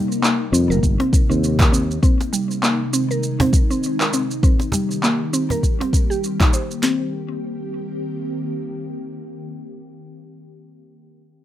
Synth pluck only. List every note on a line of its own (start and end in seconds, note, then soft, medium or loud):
0.00 0.22 G3 medium
0.22 0.39 A#3 medium
0.53 0.63 C4 medium
0.70 0.98 A#4 medium
1.00 1.12 C4 loud
1.30 1.58 C4 medium
1.60 1.72 A#4 medium
1.72 1.83 C4 medium
2.03 2.19 C4 medium
2.33 2.61 G3 medium
2.63 2.80 A#3 medium
2.93 3.03 C4 medium
3.11 3.39 A#4 medium
3.41 3.52 C4 loud
3.70 3.99 C4 medium
4.01 4.12 A#4 medium
4.14 4.23 C4 medium
4.43 4.60 C4 medium
4.73 5.02 G3 medium
5.03 5.20 A#3 medium
5.33 5.43 C4 medium
5.51 5.79 A#4 medium
5.80 5.92 C4 medium
6.10 6.21 G4 medium
6.41 6.52 D#4 medium
6.53 6.70 C5 medium
6.83 7.11 C4 medium